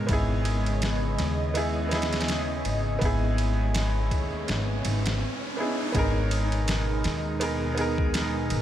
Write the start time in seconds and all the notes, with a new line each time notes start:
Already playing: B3 C#4 D#4 G#4 A#4 C#5
0.07 G#1 C#3 G#3 B3 D#4 E4 D#5, kick, ride, riser
0.13 G#4
0.45 ride
0.66 ride
0.82 snare, ride
1.19 D#2, snare, ride
1.54 B3 D#4 E4 G#4, ride
1.89 B3 D#4 E4, snare, ride
1.95 G#4
2.02 snare, ride
2.13 snare, ride
2.21 snare, ride
2.28 snare, ride
2.65 G#1, ride
2.99 G#1 B3 D#4, kick, ride
3.03 E4 G#4
3.38 ride
3.75 snare, ride
4.11 D#2, kick, ride
4.48 G#1, snare, ride
4.85 G#1, ride
5.06 snare, ride
5.57 B3 D#4 E4 G#4
5.92 G#1 B2 G#3 B3 D#4 G#4 A#4, kick, ride
5.96 G#4 A#4
6.31 ride
6.52 ride
6.68 snare, ride
7.04 D#2, snare, ride
7.40 B3 D#4 G#4 A#4, ride
7.75 B3 D#4, ride
7.79 G#4 A#4
7.98 kick
8.14 snare, ride
8.50 G#1, ride